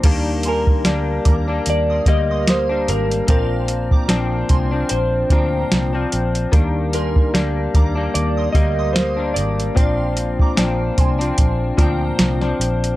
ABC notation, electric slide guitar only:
X:1
M:4/4
L:1/8
Q:"Swing 16ths" 1/4=74
K:Eb
V:1 name="Electric slide guitar"
z B3 d e c B | B4 c3 z | z B3 d e c d- | d6 z2 |]